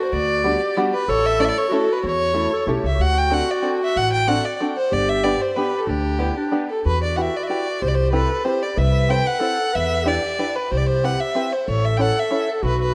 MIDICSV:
0, 0, Header, 1, 5, 480
1, 0, Start_track
1, 0, Key_signature, 1, "major"
1, 0, Tempo, 320684
1, 175, Time_signature, 3, 2, 24, 8
1, 10256, Key_signature, 1, "minor"
1, 19369, End_track
2, 0, Start_track
2, 0, Title_t, "Violin"
2, 0, Program_c, 0, 40
2, 37, Note_on_c, 0, 72, 66
2, 187, Note_on_c, 0, 74, 93
2, 209, Note_off_c, 0, 72, 0
2, 1137, Note_off_c, 0, 74, 0
2, 1400, Note_on_c, 0, 71, 82
2, 1640, Note_on_c, 0, 73, 93
2, 1663, Note_off_c, 0, 71, 0
2, 1888, Note_on_c, 0, 76, 95
2, 1910, Note_off_c, 0, 73, 0
2, 2098, Note_on_c, 0, 74, 91
2, 2121, Note_off_c, 0, 76, 0
2, 2161, Note_on_c, 0, 76, 65
2, 2183, Note_off_c, 0, 74, 0
2, 2227, Note_on_c, 0, 74, 90
2, 2250, Note_off_c, 0, 76, 0
2, 2356, Note_on_c, 0, 73, 81
2, 2379, Note_off_c, 0, 74, 0
2, 2584, Note_on_c, 0, 69, 78
2, 2606, Note_off_c, 0, 73, 0
2, 2878, Note_on_c, 0, 71, 70
2, 2900, Note_off_c, 0, 69, 0
2, 3033, Note_off_c, 0, 71, 0
2, 3061, Note_on_c, 0, 73, 98
2, 3952, Note_off_c, 0, 73, 0
2, 4284, Note_on_c, 0, 76, 81
2, 4510, Note_on_c, 0, 78, 100
2, 4533, Note_off_c, 0, 76, 0
2, 4762, Note_on_c, 0, 79, 89
2, 4784, Note_off_c, 0, 78, 0
2, 4991, Note_on_c, 0, 78, 91
2, 5013, Note_off_c, 0, 79, 0
2, 5247, Note_on_c, 0, 74, 76
2, 5270, Note_off_c, 0, 78, 0
2, 5464, Note_off_c, 0, 74, 0
2, 5749, Note_on_c, 0, 76, 87
2, 5945, Note_on_c, 0, 78, 102
2, 5967, Note_off_c, 0, 76, 0
2, 6169, Note_off_c, 0, 78, 0
2, 6178, Note_on_c, 0, 79, 98
2, 6402, Note_on_c, 0, 78, 94
2, 6424, Note_off_c, 0, 79, 0
2, 6666, Note_on_c, 0, 74, 78
2, 6688, Note_off_c, 0, 78, 0
2, 6888, Note_off_c, 0, 74, 0
2, 7134, Note_on_c, 0, 72, 84
2, 7381, Note_on_c, 0, 74, 94
2, 7404, Note_off_c, 0, 72, 0
2, 7618, Note_on_c, 0, 76, 94
2, 7641, Note_off_c, 0, 74, 0
2, 7836, Note_on_c, 0, 74, 81
2, 7858, Note_off_c, 0, 76, 0
2, 8107, Note_on_c, 0, 72, 68
2, 8130, Note_off_c, 0, 74, 0
2, 8322, Note_on_c, 0, 71, 74
2, 8345, Note_off_c, 0, 72, 0
2, 8666, Note_on_c, 0, 69, 67
2, 8688, Note_off_c, 0, 71, 0
2, 8815, Note_on_c, 0, 67, 79
2, 8837, Note_off_c, 0, 69, 0
2, 9775, Note_off_c, 0, 67, 0
2, 10021, Note_on_c, 0, 69, 66
2, 10242, Note_off_c, 0, 69, 0
2, 10281, Note_on_c, 0, 71, 87
2, 10503, Note_off_c, 0, 71, 0
2, 10530, Note_on_c, 0, 74, 74
2, 10721, Note_on_c, 0, 78, 62
2, 10743, Note_off_c, 0, 74, 0
2, 10795, Note_on_c, 0, 76, 76
2, 10818, Note_off_c, 0, 78, 0
2, 11027, Note_on_c, 0, 74, 68
2, 11049, Note_off_c, 0, 76, 0
2, 11127, Note_on_c, 0, 76, 52
2, 11150, Note_off_c, 0, 74, 0
2, 11187, Note_on_c, 0, 74, 81
2, 11209, Note_off_c, 0, 76, 0
2, 11708, Note_on_c, 0, 72, 89
2, 11730, Note_off_c, 0, 74, 0
2, 11796, Note_on_c, 0, 74, 71
2, 11819, Note_off_c, 0, 72, 0
2, 11901, Note_on_c, 0, 72, 82
2, 11923, Note_off_c, 0, 74, 0
2, 12156, Note_off_c, 0, 72, 0
2, 12165, Note_on_c, 0, 71, 86
2, 12632, Note_on_c, 0, 72, 85
2, 12655, Note_off_c, 0, 71, 0
2, 12912, Note_on_c, 0, 74, 75
2, 12934, Note_off_c, 0, 72, 0
2, 13139, Note_on_c, 0, 76, 93
2, 13162, Note_off_c, 0, 74, 0
2, 13628, Note_on_c, 0, 79, 97
2, 13650, Note_off_c, 0, 76, 0
2, 13868, Note_on_c, 0, 78, 96
2, 13890, Note_off_c, 0, 79, 0
2, 14599, Note_on_c, 0, 76, 101
2, 14621, Note_off_c, 0, 78, 0
2, 15088, Note_on_c, 0, 74, 87
2, 15110, Note_off_c, 0, 76, 0
2, 15801, Note_on_c, 0, 71, 73
2, 15824, Note_off_c, 0, 74, 0
2, 16029, Note_on_c, 0, 72, 82
2, 16052, Note_off_c, 0, 71, 0
2, 16121, Note_on_c, 0, 74, 68
2, 16143, Note_off_c, 0, 72, 0
2, 16263, Note_on_c, 0, 72, 85
2, 16285, Note_off_c, 0, 74, 0
2, 16529, Note_on_c, 0, 78, 82
2, 16551, Note_off_c, 0, 72, 0
2, 16765, Note_on_c, 0, 76, 86
2, 16787, Note_off_c, 0, 78, 0
2, 17249, Note_on_c, 0, 72, 74
2, 17271, Note_off_c, 0, 76, 0
2, 17491, Note_on_c, 0, 73, 84
2, 17513, Note_off_c, 0, 72, 0
2, 17738, Note_on_c, 0, 76, 79
2, 17761, Note_off_c, 0, 73, 0
2, 17916, Note_on_c, 0, 79, 69
2, 17938, Note_off_c, 0, 76, 0
2, 17980, Note_on_c, 0, 78, 88
2, 18002, Note_off_c, 0, 79, 0
2, 18245, Note_on_c, 0, 76, 78
2, 18268, Note_off_c, 0, 78, 0
2, 18699, Note_on_c, 0, 69, 73
2, 18722, Note_off_c, 0, 76, 0
2, 18914, Note_off_c, 0, 69, 0
2, 18939, Note_on_c, 0, 71, 86
2, 19146, Note_off_c, 0, 71, 0
2, 19185, Note_on_c, 0, 71, 89
2, 19369, Note_off_c, 0, 71, 0
2, 19369, End_track
3, 0, Start_track
3, 0, Title_t, "Clarinet"
3, 0, Program_c, 1, 71
3, 0, Note_on_c, 1, 66, 88
3, 648, Note_on_c, 1, 67, 83
3, 670, Note_off_c, 1, 66, 0
3, 1605, Note_off_c, 1, 67, 0
3, 1620, Note_on_c, 1, 69, 114
3, 2497, Note_off_c, 1, 69, 0
3, 2523, Note_on_c, 1, 66, 90
3, 3435, Note_off_c, 1, 66, 0
3, 3503, Note_on_c, 1, 64, 66
3, 3736, Note_off_c, 1, 64, 0
3, 3784, Note_on_c, 1, 69, 82
3, 3993, Note_off_c, 1, 69, 0
3, 4021, Note_on_c, 1, 67, 82
3, 4367, Note_off_c, 1, 67, 0
3, 4410, Note_on_c, 1, 67, 66
3, 4481, Note_on_c, 1, 66, 92
3, 4504, Note_off_c, 1, 67, 0
3, 6961, Note_off_c, 1, 66, 0
3, 7347, Note_on_c, 1, 67, 91
3, 8247, Note_off_c, 1, 67, 0
3, 8324, Note_on_c, 1, 67, 92
3, 8799, Note_on_c, 1, 62, 78
3, 8821, Note_off_c, 1, 67, 0
3, 9271, Note_on_c, 1, 64, 66
3, 9293, Note_off_c, 1, 62, 0
3, 9516, Note_off_c, 1, 64, 0
3, 9525, Note_on_c, 1, 62, 80
3, 9984, Note_off_c, 1, 62, 0
3, 10269, Note_on_c, 1, 66, 78
3, 11680, Note_on_c, 1, 67, 83
3, 11703, Note_off_c, 1, 66, 0
3, 12182, Note_on_c, 1, 69, 78
3, 12204, Note_off_c, 1, 67, 0
3, 12641, Note_off_c, 1, 69, 0
3, 12650, Note_on_c, 1, 67, 82
3, 13140, Note_on_c, 1, 71, 101
3, 13162, Note_off_c, 1, 67, 0
3, 14058, Note_on_c, 1, 69, 86
3, 14081, Note_off_c, 1, 71, 0
3, 14563, Note_on_c, 1, 71, 93
3, 14585, Note_off_c, 1, 69, 0
3, 15019, Note_on_c, 1, 67, 70
3, 15041, Note_off_c, 1, 71, 0
3, 15774, Note_off_c, 1, 67, 0
3, 16022, Note_on_c, 1, 67, 79
3, 17016, Note_off_c, 1, 67, 0
3, 17458, Note_on_c, 1, 69, 87
3, 18890, Note_on_c, 1, 66, 93
3, 18913, Note_off_c, 1, 69, 0
3, 19369, Note_off_c, 1, 66, 0
3, 19369, End_track
4, 0, Start_track
4, 0, Title_t, "Five-string banjo"
4, 0, Program_c, 2, 105
4, 658, Note_on_c, 2, 59, 61
4, 664, Note_on_c, 2, 55, 60
4, 674, Note_on_c, 2, 66, 70
4, 680, Note_on_c, 2, 62, 53
4, 901, Note_off_c, 2, 59, 0
4, 902, Note_off_c, 2, 55, 0
4, 909, Note_off_c, 2, 62, 0
4, 909, Note_off_c, 2, 66, 0
4, 1148, Note_on_c, 2, 55, 73
4, 1157, Note_on_c, 2, 66, 90
4, 1158, Note_on_c, 2, 59, 73
4, 1159, Note_on_c, 2, 62, 67
4, 1386, Note_off_c, 2, 55, 0
4, 1386, Note_off_c, 2, 62, 0
4, 1388, Note_off_c, 2, 66, 0
4, 1390, Note_off_c, 2, 59, 0
4, 2086, Note_on_c, 2, 57, 65
4, 2088, Note_on_c, 2, 61, 57
4, 2096, Note_on_c, 2, 64, 60
4, 2104, Note_on_c, 2, 69, 71
4, 2324, Note_off_c, 2, 57, 0
4, 2324, Note_off_c, 2, 61, 0
4, 2329, Note_off_c, 2, 64, 0
4, 2331, Note_off_c, 2, 69, 0
4, 2562, Note_on_c, 2, 57, 65
4, 2568, Note_on_c, 2, 61, 67
4, 2572, Note_on_c, 2, 64, 62
4, 2573, Note_on_c, 2, 69, 79
4, 2800, Note_off_c, 2, 57, 0
4, 2803, Note_off_c, 2, 61, 0
4, 2803, Note_off_c, 2, 64, 0
4, 2804, Note_off_c, 2, 69, 0
4, 3504, Note_on_c, 2, 57, 66
4, 3504, Note_on_c, 2, 61, 56
4, 3508, Note_on_c, 2, 64, 52
4, 3511, Note_on_c, 2, 69, 76
4, 3754, Note_off_c, 2, 61, 0
4, 3755, Note_off_c, 2, 57, 0
4, 3755, Note_off_c, 2, 64, 0
4, 3758, Note_off_c, 2, 69, 0
4, 3997, Note_on_c, 2, 57, 59
4, 4009, Note_on_c, 2, 64, 64
4, 4012, Note_on_c, 2, 61, 66
4, 4019, Note_on_c, 2, 69, 70
4, 4248, Note_off_c, 2, 57, 0
4, 4250, Note_off_c, 2, 64, 0
4, 4254, Note_off_c, 2, 61, 0
4, 4257, Note_off_c, 2, 69, 0
4, 4946, Note_on_c, 2, 60, 63
4, 4956, Note_on_c, 2, 69, 72
4, 4958, Note_on_c, 2, 62, 52
4, 4968, Note_on_c, 2, 66, 53
4, 5202, Note_off_c, 2, 60, 0
4, 5206, Note_off_c, 2, 62, 0
4, 5207, Note_off_c, 2, 69, 0
4, 5213, Note_off_c, 2, 66, 0
4, 5421, Note_on_c, 2, 60, 61
4, 5433, Note_on_c, 2, 62, 50
4, 5438, Note_on_c, 2, 66, 52
4, 5443, Note_on_c, 2, 69, 72
4, 5680, Note_off_c, 2, 60, 0
4, 5686, Note_off_c, 2, 62, 0
4, 5689, Note_off_c, 2, 66, 0
4, 5689, Note_off_c, 2, 69, 0
4, 6399, Note_on_c, 2, 60, 66
4, 6405, Note_on_c, 2, 66, 63
4, 6415, Note_on_c, 2, 69, 81
4, 6419, Note_on_c, 2, 62, 64
4, 6643, Note_off_c, 2, 60, 0
4, 6648, Note_off_c, 2, 66, 0
4, 6649, Note_off_c, 2, 62, 0
4, 6650, Note_off_c, 2, 69, 0
4, 6890, Note_on_c, 2, 60, 55
4, 6896, Note_on_c, 2, 66, 60
4, 6899, Note_on_c, 2, 62, 58
4, 6906, Note_on_c, 2, 69, 64
4, 7129, Note_off_c, 2, 60, 0
4, 7132, Note_off_c, 2, 66, 0
4, 7133, Note_off_c, 2, 62, 0
4, 7137, Note_off_c, 2, 69, 0
4, 7841, Note_on_c, 2, 59, 67
4, 7841, Note_on_c, 2, 67, 63
4, 7846, Note_on_c, 2, 62, 68
4, 7854, Note_on_c, 2, 71, 76
4, 8080, Note_off_c, 2, 59, 0
4, 8083, Note_off_c, 2, 67, 0
4, 8085, Note_off_c, 2, 62, 0
4, 8089, Note_off_c, 2, 71, 0
4, 8326, Note_on_c, 2, 59, 69
4, 8340, Note_on_c, 2, 67, 57
4, 8345, Note_on_c, 2, 62, 62
4, 8352, Note_on_c, 2, 71, 70
4, 8563, Note_off_c, 2, 59, 0
4, 8570, Note_off_c, 2, 62, 0
4, 8572, Note_off_c, 2, 67, 0
4, 8576, Note_off_c, 2, 71, 0
4, 9261, Note_on_c, 2, 67, 50
4, 9266, Note_on_c, 2, 59, 67
4, 9268, Note_on_c, 2, 62, 60
4, 9281, Note_on_c, 2, 71, 65
4, 9515, Note_off_c, 2, 59, 0
4, 9517, Note_off_c, 2, 67, 0
4, 9518, Note_off_c, 2, 62, 0
4, 9526, Note_off_c, 2, 71, 0
4, 9752, Note_on_c, 2, 62, 67
4, 9758, Note_on_c, 2, 59, 61
4, 9763, Note_on_c, 2, 67, 54
4, 9769, Note_on_c, 2, 71, 69
4, 10012, Note_off_c, 2, 62, 0
4, 10013, Note_off_c, 2, 59, 0
4, 10017, Note_off_c, 2, 67, 0
4, 10020, Note_off_c, 2, 71, 0
4, 10735, Note_on_c, 2, 64, 55
4, 10737, Note_on_c, 2, 67, 56
4, 10739, Note_on_c, 2, 66, 55
4, 10749, Note_on_c, 2, 71, 63
4, 10989, Note_off_c, 2, 64, 0
4, 10990, Note_off_c, 2, 66, 0
4, 10991, Note_off_c, 2, 67, 0
4, 10997, Note_off_c, 2, 71, 0
4, 11219, Note_on_c, 2, 64, 60
4, 11220, Note_on_c, 2, 66, 48
4, 11232, Note_on_c, 2, 67, 58
4, 11235, Note_on_c, 2, 71, 59
4, 11470, Note_off_c, 2, 66, 0
4, 11472, Note_off_c, 2, 64, 0
4, 11477, Note_off_c, 2, 71, 0
4, 11478, Note_off_c, 2, 67, 0
4, 12163, Note_on_c, 2, 60, 56
4, 12165, Note_on_c, 2, 67, 53
4, 12172, Note_on_c, 2, 64, 63
4, 12173, Note_on_c, 2, 71, 59
4, 12420, Note_off_c, 2, 60, 0
4, 12422, Note_off_c, 2, 64, 0
4, 12422, Note_off_c, 2, 67, 0
4, 12422, Note_off_c, 2, 71, 0
4, 12640, Note_on_c, 2, 67, 54
4, 12644, Note_on_c, 2, 60, 66
4, 12650, Note_on_c, 2, 64, 52
4, 12658, Note_on_c, 2, 71, 65
4, 12896, Note_off_c, 2, 60, 0
4, 12896, Note_off_c, 2, 64, 0
4, 12897, Note_off_c, 2, 67, 0
4, 12898, Note_off_c, 2, 71, 0
4, 13605, Note_on_c, 2, 60, 68
4, 13617, Note_on_c, 2, 64, 64
4, 13624, Note_on_c, 2, 69, 58
4, 13631, Note_on_c, 2, 72, 73
4, 13853, Note_off_c, 2, 60, 0
4, 13861, Note_off_c, 2, 64, 0
4, 13862, Note_off_c, 2, 69, 0
4, 13862, Note_off_c, 2, 72, 0
4, 14072, Note_on_c, 2, 60, 57
4, 14079, Note_on_c, 2, 64, 54
4, 14081, Note_on_c, 2, 69, 63
4, 14093, Note_on_c, 2, 72, 72
4, 14326, Note_off_c, 2, 60, 0
4, 14330, Note_off_c, 2, 64, 0
4, 14330, Note_off_c, 2, 69, 0
4, 14337, Note_off_c, 2, 72, 0
4, 15047, Note_on_c, 2, 62, 67
4, 15055, Note_on_c, 2, 67, 55
4, 15059, Note_on_c, 2, 64, 60
4, 15068, Note_on_c, 2, 71, 67
4, 15296, Note_off_c, 2, 62, 0
4, 15299, Note_off_c, 2, 64, 0
4, 15301, Note_off_c, 2, 67, 0
4, 15307, Note_off_c, 2, 71, 0
4, 15548, Note_on_c, 2, 64, 56
4, 15548, Note_on_c, 2, 67, 49
4, 15556, Note_on_c, 2, 62, 62
4, 15557, Note_on_c, 2, 71, 64
4, 15793, Note_off_c, 2, 62, 0
4, 15793, Note_off_c, 2, 64, 0
4, 15796, Note_off_c, 2, 67, 0
4, 15799, Note_off_c, 2, 71, 0
4, 16523, Note_on_c, 2, 60, 57
4, 16524, Note_on_c, 2, 67, 52
4, 16530, Note_on_c, 2, 64, 52
4, 16538, Note_on_c, 2, 71, 58
4, 16764, Note_off_c, 2, 60, 0
4, 16766, Note_off_c, 2, 67, 0
4, 16768, Note_off_c, 2, 64, 0
4, 16773, Note_off_c, 2, 71, 0
4, 16988, Note_on_c, 2, 60, 67
4, 16993, Note_on_c, 2, 64, 57
4, 16996, Note_on_c, 2, 67, 54
4, 17006, Note_on_c, 2, 71, 60
4, 17236, Note_off_c, 2, 60, 0
4, 17237, Note_off_c, 2, 64, 0
4, 17240, Note_off_c, 2, 67, 0
4, 17244, Note_off_c, 2, 71, 0
4, 17940, Note_on_c, 2, 61, 65
4, 17946, Note_on_c, 2, 64, 65
4, 17952, Note_on_c, 2, 69, 58
4, 17961, Note_on_c, 2, 73, 68
4, 18187, Note_off_c, 2, 61, 0
4, 18192, Note_off_c, 2, 64, 0
4, 18192, Note_off_c, 2, 69, 0
4, 18194, Note_off_c, 2, 73, 0
4, 18420, Note_on_c, 2, 61, 68
4, 18422, Note_on_c, 2, 64, 56
4, 18428, Note_on_c, 2, 69, 57
4, 18435, Note_on_c, 2, 73, 68
4, 18666, Note_off_c, 2, 61, 0
4, 18666, Note_off_c, 2, 64, 0
4, 18670, Note_off_c, 2, 69, 0
4, 18673, Note_off_c, 2, 73, 0
4, 19369, End_track
5, 0, Start_track
5, 0, Title_t, "Upright bass"
5, 0, Program_c, 3, 32
5, 186, Note_on_c, 3, 38, 82
5, 804, Note_off_c, 3, 38, 0
5, 1620, Note_on_c, 3, 33, 71
5, 2229, Note_off_c, 3, 33, 0
5, 3048, Note_on_c, 3, 40, 88
5, 3670, Note_off_c, 3, 40, 0
5, 3991, Note_on_c, 3, 35, 70
5, 4218, Note_off_c, 3, 35, 0
5, 4247, Note_on_c, 3, 37, 72
5, 4459, Note_off_c, 3, 37, 0
5, 4471, Note_on_c, 3, 38, 74
5, 5101, Note_off_c, 3, 38, 0
5, 5932, Note_on_c, 3, 33, 75
5, 6549, Note_off_c, 3, 33, 0
5, 7365, Note_on_c, 3, 31, 84
5, 7983, Note_off_c, 3, 31, 0
5, 8789, Note_on_c, 3, 38, 76
5, 9422, Note_off_c, 3, 38, 0
5, 10260, Note_on_c, 3, 40, 74
5, 10891, Note_off_c, 3, 40, 0
5, 11707, Note_on_c, 3, 36, 76
5, 12327, Note_off_c, 3, 36, 0
5, 13129, Note_on_c, 3, 36, 87
5, 13751, Note_off_c, 3, 36, 0
5, 14600, Note_on_c, 3, 40, 85
5, 15219, Note_off_c, 3, 40, 0
5, 16040, Note_on_c, 3, 36, 73
5, 16664, Note_off_c, 3, 36, 0
5, 17481, Note_on_c, 3, 33, 86
5, 18096, Note_off_c, 3, 33, 0
5, 18900, Note_on_c, 3, 35, 79
5, 19369, Note_off_c, 3, 35, 0
5, 19369, End_track
0, 0, End_of_file